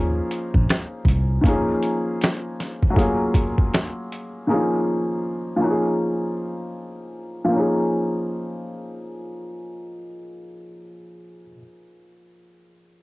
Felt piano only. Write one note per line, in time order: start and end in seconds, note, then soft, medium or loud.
0.00 1.39 F3 medium
0.00 1.39 A#3 medium
0.00 1.41 C#4 medium
0.00 1.41 D#4 medium
0.00 1.42 G#4 medium
1.41 1.51 D#3 medium
1.41 2.93 A#3 medium
1.41 2.92 C#4 medium
1.47 2.95 F3 medium
1.47 2.94 D#4 medium
1.47 2.95 G#4 medium
2.90 4.42 F#3 medium
2.90 3.03 A3 soft
2.90 4.44 C#4 medium
2.96 4.46 A#3 soft
2.96 4.45 F4 medium
2.96 4.46 G#4 medium
4.47 4.56 D#3 soft
4.47 5.57 A#3 medium
4.47 5.59 C#4 medium
4.47 5.61 D#4 medium
4.47 5.63 G#4 medium
4.54 5.55 F3 medium
5.56 7.43 F3 medium
5.56 7.46 A#3 medium
5.56 7.47 C#4 medium
5.62 7.48 D#4 medium
5.62 5.71 F#4 soft
5.70 7.52 G#4 medium
7.44 11.43 F3 medium
7.44 11.46 A#3 medium
7.52 11.50 C#4 medium
7.52 11.54 D#4 medium
7.59 11.58 G#4 medium